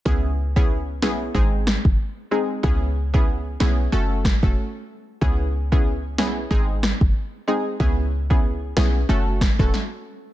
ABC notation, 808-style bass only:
X:1
M:4/4
L:1/16
Q:"Swing 16ths" 1/4=93
K:C#m
V:1 name="808-style bass" clef=bass
C,,6 B,,,2 G,,,3 F,,, z4 | C,,6 B,,,2 F,,,3 E,,, z4 | C,,6 B,,,2 G,,,3 F,,, z4 | C,,6 B,,,2 F,,,3 E,,, z4 |]